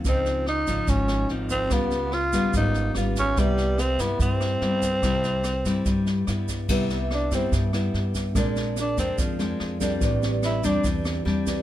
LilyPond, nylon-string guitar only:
\new Staff \with { instrumentName = "Nylon-string guitar" } { \time 4/4 \key c \major \tempo 4 = 144 << { <f c' ees'>4 r8 <f ees'>4. <f c' ees'>4 | <g ces' f'>4 r8 <g ces' f'>4. <g ces' f'>4 | <g b e'>4 r8 <g e'>4. <g b e'>8 r8 | <g e'>4 r8 <g e'>4. <g b e'>4 |
<g b e'>4. <g b e'>4 <g b e'>4. | <aes c' d'>4 r8 <aes c' d'>4 <aes c' d'>4 <g c' d'>8~ | <g c' d'>4. <g c' d'>4. <g c' d'>4 | } \\ { des2 aes,2 | des2 aes,2 | c2 g,2 | c2 g,2 |
c2 g,2 | bes,2 f2 | a,2 e2 | } >> }